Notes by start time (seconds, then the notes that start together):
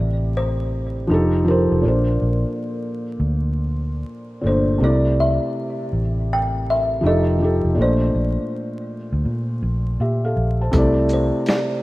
Already playing: C3 A3 E4 D5
0.00 A1
0.37 C5
1.07 F1 F3 D#4 G4 A4
1.14 A4
1.45 F3 D#4 G4 A#4
1.51 C5
1.72 F1
1.82 A#1 A#2 A#3
1.86 D4 C5
2.22 A#1
3.20 D2
4.41 G1 A#2 A3
4.46 D4 C5
4.78 C2 C3 A3
4.83 E4 D5
5.20 E5
5.93 A1
6.33 G5
6.70 E5
7.01 F1 F3 D#4
7.05 G4 A4 D#5
7.38 F3 D#4
7.42 G4 A4
7.64 F1
7.75 A#1 A#2 A3
7.79 D4 C5 D5
8.14 A#1
9.13 D2
9.25 A#2
9.62 A#1
10.00 A#2 G4 E5
10.25 A4 F5
10.37 A#1
10.61 C5 A5
10.71 C2 C3 A3 E4, kick, closed hi-hat
10.77 D5
11.09 closed hi-hat, shaker
11.13 C5
11.46 D5, snare, closed hi-hat